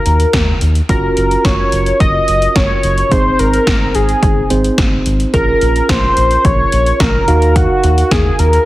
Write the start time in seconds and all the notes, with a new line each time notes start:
Already playing: D#4 F#4 A#4 F5
0.06 D#2, closed hi-hat
0.20 closed hi-hat
0.33 D#2, kick, snare, closed hi-hat
0.61 D#2, closed hi-hat
0.75 closed hi-hat
0.89 F#1 C#4 F4 F#4 A#4, kick, closed hi-hat
1.17 F#1, closed hi-hat
1.31 closed hi-hat
1.45 F#1 C#5, kick, snare, closed hi-hat
1.72 F#1, closed hi-hat
1.86 closed hi-hat
2.00 F#1 D#5, kick, closed hi-hat
2.28 F#1, closed hi-hat
2.42 closed hi-hat
2.56 F#1 C#5, kick, snare, closed hi-hat
2.83 F#1, closed hi-hat
2.98 closed hi-hat
3.11 G#1 C4 D#4 G#4 C5, kick, closed hi-hat
3.39 G#1 A#4, closed hi-hat
3.54 closed hi-hat
3.67 G#1, kick, snare, closed hi-hat
3.95 G#1 G#4, closed hi-hat
4.09 closed hi-hat
4.23 G#1, kick, closed hi-hat
4.50 G#1 C4 D#4 G#4 C5, closed hi-hat
4.64 closed hi-hat
4.78 G#1, kick, snare, closed hi-hat
5.06 G#1, closed hi-hat
5.20 closed hi-hat
5.33 A#1 C#4 F4 G#4 A#4, kick, closed hi-hat
5.61 A#1, closed hi-hat
5.76 closed hi-hat
5.89 A#1 C5, kick, snare, closed hi-hat
6.17 A#1, closed hi-hat
6.31 closed hi-hat
6.45 A#1 C#5, kick, closed hi-hat
6.72 A#1, closed hi-hat
6.86 closed hi-hat
7.00 A#1 A#4, kick, snare, closed hi-hat
7.28 D#2 D#4 F#4 A#4 F5, closed hi-hat
7.42 closed hi-hat
7.56 F#4, kick, closed hi-hat
7.84 D#2, closed hi-hat
7.98 closed hi-hat
8.11 D#2 G#4, kick, snare, closed hi-hat
8.39 D#2 A#4, closed hi-hat
8.53 closed hi-hat